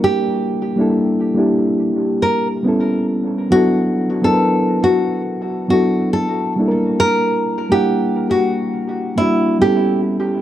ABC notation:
X:1
M:4/4
L:1/16
Q:"Swing 16ths" 1/4=69
K:D
V:1 name="Nylon-string guitar"
G8 z2 _B z4 z | F3 A3 F4 F2 A2 z2 | _B3 G3 F4 E2 G2 z2 |]
V:2 name="Reed electric piano"
[G,_B,DE_B]2 z [G,B,DEA]2 z [G,B,DEG]6 [G,=B,CEA]3 z | [F,B,DEA]2 z [F,B,DE_B=B]4- [F,B,DE_B=B] z2 [F,B,DEA]4 [G,_B,DEA_B]2- | [G,_B,DEA_B]2 z [G,B,DEf]4- [G,B,DEf] z2 [G,B,DEF]2 [G,=B,CEA]3 z |]